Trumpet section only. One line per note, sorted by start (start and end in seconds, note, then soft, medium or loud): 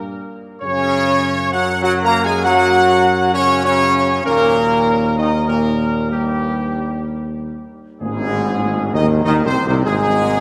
0.00 0.29 A#4 loud
0.62 1.49 C#5 loud
1.53 1.82 F#5 loud
1.83 1.92 F#5 loud
2.04 2.23 A#5 loud
2.25 2.43 G#5 loud
2.44 3.31 F#5 loud
3.34 3.62 C#5 loud
3.64 4.21 C#5 loud
4.25 5.13 A#4 loud
5.17 5.48 D#5 loud
5.48 6.07 A#4 loud
6.11 7.34 G4 loud
8.01 8.90 G#4 loud
8.94 9.08 D#5 loud
9.25 9.34 D#5 loud
9.46 9.65 C5 loud
9.67 9.76 C5 medium
9.86 10.40 G#4 loud